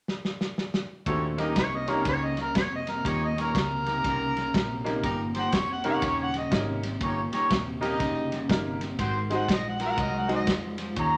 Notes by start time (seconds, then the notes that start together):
0.08 snare
0.25 snare
0.41 snare
0.58 snare
0.74 snare
1.06 D#2 A#2 A3 C4 C#4 D4 D#4 F#4 G4 A4 C#5, kick, ride
1.38 D#2 A#2 A#3 C#4 D#4 G4 A#4 D#5, snare, ride
1.56 C2 D#2 C3 C#5, kick, snare, ride
1.76 D#5
1.87 D#2 C3 A#3 C#4 D#4 G4 C#5, snare, ride
1.93 A#4
2.05 C#2 D#2 C#3 C#5, kick, snare, ride
2.25 D#5
2.37 D#2 C#3, snare, ride
2.42 A#4
2.55 D#2 F2 C3 C#5, kick, snare, ride
2.76 D#5
2.87 D#2 C3 A#4, snare, ride
3.05 D#2 A#2 D#4 G4 C#5 D#5, kick, snare, ride
3.26 D#5
3.36 D#2 A#2 C#4 D#4 G4 C#5, snare, ride
3.41 A#4
3.55 C#2 D#2 C3, kick, snare, ride
3.59 A#4
3.85 D#2 C3 A#3 D#4 G4 A#4, snare, ride
4.04 C2 D#2 C#3, kick, snare, ride
4.36 D#2 C#3, snare, ride
4.54 A#1 D#2 C3, kick, snare, ride
4.84 D#2 C3 A#3 C#4 D#4 G4 A#4, snare, ride
5.03 G1 D#2 A#2 A#3 D#4 G4 A#4, kick, snare, ride
5.35 D#2 A#2 C4 D#4 G4 C5, snare, ride
5.39 F#5
5.52 F1 D#2 C3 C#5, kick, snare, ride
5.72 F#5
5.84 D#2 C3 A#3 C#4 D#4 G4 A#4 C#5, snare, ride
5.90 F#5
6.02 D#1 D#2 C#3 C#5, kick, snare, ride
6.23 F#5
6.34 D#2 C#3, snare, ride
6.39 D#5
6.51 G#1 D#2 C3 A#3 C#4 D#4 G4 C#5, kick, snare, ride
6.83 D#2 C3, snare, ride
7.01 G1 D#2 A#2 C#4 D#4 G4 C#5, kick, ride
7.32 D#2 A#2 C#4 D#4 G4 C#5, snare, ride
7.50 D#1 D#2 C3, kick, snare, ride
7.81 D#2 C3 A#3 C#4 D#4 G4 A#4 D#5, snare, ride
8.00 F1 D#2 C#3, kick, snare, ride
8.32 D#2 C#3, snare, ride
8.49 G1 D#2 C3 A#3 C#4 D#4 G4 A#4, kick, snare, ride
8.81 D#2 C3, snare, ride
8.99 G#1 G#2 D#3 C4 F#4 G#4 C5, kick, snare, ride
9.30 G#2 D#3 G#3 C4 D#4 F#4 G#4 C5, snare, ride
9.36 F#5
9.48 A#1 G#2 F3, kick, snare, ride
9.53 D#5
9.69 F#5
9.80 G#2 F3 A#3 F#4 G#4 A#4, snare, ride
9.86 F#5
9.98 C2 G#2 F#3 D#5, kick, ride
10.18 F#5
10.28 G#2 F#3 G#3 C4 D#4 F#4 G#4, snare, ride
10.35 D#5
10.47 F2 G#2 F3, kick, snare, ride
10.78 G#2 F3, snare, ride
10.96 D#2 A#2 C#4 D#4 G4 C#5, kick, ride
11.00 A#5